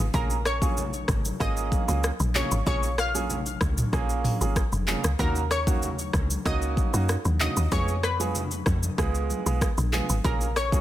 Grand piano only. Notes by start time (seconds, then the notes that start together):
0.14 A#3 C#4 F4 G#4
0.62 A#3 C#4 F4 G#4
1.40 A#3 C#4 F4 G#4
1.88 A#3 C#4 F4 G#4
2.35 A#3 C#4 F4 G#4
2.66 A#3 C#4 F4 G#4
3.14 A#3 C#4 F4 G#4
3.93 A#3 C#4 F4 G#4
4.41 A#3 C#4 F4 G#4
4.87 A#3 C#4 F4 G#4
5.19 A#3 C#4 D#4 F#4
5.67 A#3 C#4 D#4 F#4
6.45 A#3 C#4 D#4 F#4
6.93 A#3 C#4 D#4 F#4
7.40 A#3 C#4 D#4 F#4
7.72 G#3 B3 F4 G#4
8.20 G#3 B3 F4 G#4
8.98 G#3 B3 F4 G#4
9.46 G#3 B3 F4 G#4
9.93 G#3 B3 F4 G#4
10.24 A#3 C#4 F4 G#4
10.72 A#3 C#4 F4 G#4